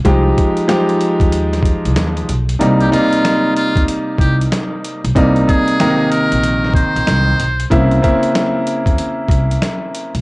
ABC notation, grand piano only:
X:1
M:4/4
L:1/8
Q:"Swing 16ths" 1/4=94
K:Cm
V:1 name="Grand piano"
[F,A,EG]2 [F,A,EG]4- [F,A,EG] z | [C,G,B,E] [C,G,B,E]6 z | [C,G,B,E]2 [C,E,B,E]4- [C,E,B,E] z | [_D,B,C=E] [D,B,CE]6 z |]